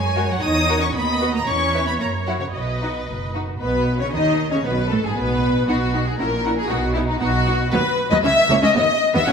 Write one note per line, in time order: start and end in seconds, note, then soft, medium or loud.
0.00 0.33 F#2 medium
0.00 0.29 G#3 medium
0.00 0.94 C#5 medium
0.00 0.28 G#5 medium
0.16 0.28 F#4 medium
0.16 0.28 A#4 medium
0.29 0.42 F#3 medium
0.29 0.43 F#5 medium
0.42 0.85 E2 medium
0.42 0.80 D#4 medium
0.42 0.81 D#6 loud
0.68 0.80 F#4 medium
0.68 0.81 A#4 medium
0.81 0.94 C#4 medium
0.81 0.95 C#6 medium
0.94 1.38 D#2 medium
0.94 1.34 B3 medium
0.94 1.46 D#5 medium
0.94 1.33 B5 medium
1.21 1.33 F#4 medium
1.21 1.33 B4 medium
1.33 1.39 A#3 medium
1.33 1.47 A#5 medium
1.46 1.91 E2 medium
1.46 1.86 C#4 medium
1.46 2.51 C#5 medium
1.46 1.86 C#6 medium
1.74 1.86 E4 medium
1.74 1.86 B4 medium
1.87 2.00 B3 medium
1.87 1.92 B5 medium
2.00 2.45 F#2 medium
2.00 2.08 A#3 medium
2.00 2.09 A#5 medium
2.27 2.40 F#3 medium
2.27 2.40 E4 soft
2.27 2.39 F#4 soft
2.27 2.32 F#5 medium
2.40 2.54 C#3 soft
2.40 2.46 C#5 medium
2.53 2.99 B1 medium
2.53 3.33 B2 soft
2.53 3.32 B4 medium
2.53 3.33 D#5 medium
2.82 2.94 D#4 soft
2.82 2.94 F#4 soft
3.08 3.52 F#1 soft
3.34 3.47 D#4 soft
3.34 3.47 F#4 soft
3.60 3.97 B1 medium
3.60 3.97 B2 medium
3.60 3.97 B3 medium
3.60 3.97 B4 medium
3.99 4.13 C#3 medium
3.99 4.12 C#4 medium
3.99 4.05 C#5 medium
3.99 4.13 C#5 medium
4.12 4.52 D#2 medium
4.12 4.52 D#3 medium
4.12 4.51 D#4 medium
4.12 4.51 D#5 medium
4.51 4.58 C#3 medium
4.51 4.57 C#4 medium
4.51 4.57 C#5 medium
4.51 4.64 C#5 medium
4.64 4.90 B1 medium
4.64 4.91 B2 medium
4.64 4.72 B3 medium
4.64 4.91 B4 medium
4.64 4.90 B4 medium
4.90 5.04 A1 medium
4.90 5.04 A2 medium
4.90 4.96 A3 medium
4.90 5.03 A4 medium
4.90 5.04 A4 medium
5.03 5.16 G#2 medium
5.03 5.16 G#3 medium
5.03 5.09 G#4 medium
5.03 5.17 G#4 medium
5.15 5.66 B1 medium
5.15 5.67 B2 medium
5.15 5.66 B3 medium
5.15 5.67 B4 medium
5.15 5.68 B4 medium
5.67 6.13 B1 medium
5.67 6.13 B2 medium
5.67 5.75 B3 medium
5.67 5.75 D#4 medium
5.67 6.05 F#4 medium
5.67 5.76 F#5 medium
5.93 6.01 B3 medium
5.93 6.01 D#4 medium
5.93 6.02 F#5 soft
6.08 6.20 G#4 medium
6.19 6.64 A#1 medium
6.19 6.64 A#2 medium
6.19 6.27 C#4 medium
6.19 6.27 E4 medium
6.19 6.56 A#4 medium
6.19 6.27 F#5 medium
6.44 6.52 C#4 medium
6.44 6.52 E4 medium
6.44 6.53 F#5 medium
6.58 6.70 G#4 medium
6.68 7.15 B1 medium
6.68 7.15 B2 medium
6.68 6.78 B3 medium
6.68 6.78 D#4 medium
6.68 6.95 F#4 medium
6.68 6.78 F#5 medium
6.94 7.04 B3 medium
6.94 7.04 D#4 medium
6.94 6.99 E4 medium
6.94 7.03 F#5 medium
7.08 7.20 D#4 medium
7.20 7.67 B1 medium
7.20 7.66 B2 medium
7.20 7.29 B3 medium
7.20 7.29 D#4 medium
7.20 7.71 F#4 loud
7.20 7.28 F#5 medium
7.45 7.55 B3 medium
7.45 7.55 D#4 medium
7.45 7.53 F#5 medium
7.71 7.78 D#2 medium
7.71 7.78 F#3 medium
7.71 7.78 B3 loud
7.71 7.77 B4 medium
7.71 8.10 B4 loud
8.11 8.16 D#2 medium
8.11 8.16 F#3 medium
8.11 8.16 B3 medium
8.11 8.16 B4 medium
8.11 8.16 D#5 medium
8.24 8.29 C#2 medium
8.24 8.29 C#4 medium
8.24 8.61 E5 loud
8.24 8.30 E5 medium
8.49 8.55 C#2 medium
8.49 8.55 A#3 medium
8.49 8.55 C#4 medium
8.49 8.55 C#5 medium
8.62 8.68 C#2 medium
8.62 8.67 C#4 medium
8.62 8.75 D#5 loud
8.62 8.69 E5 medium
8.75 8.81 D#2 medium
8.75 8.81 B3 medium
8.75 9.14 D#5 loud
8.75 8.81 D#5 loud
9.14 9.20 D#2 medium
9.14 9.20 B3 medium
9.14 9.20 D#5 medium
9.14 9.27 E5 loud
9.27 9.33 E1 medium
9.27 9.33 E2 medium
9.27 9.33 C#4 medium
9.27 9.33 F#5 loud
9.27 9.33 G#5 medium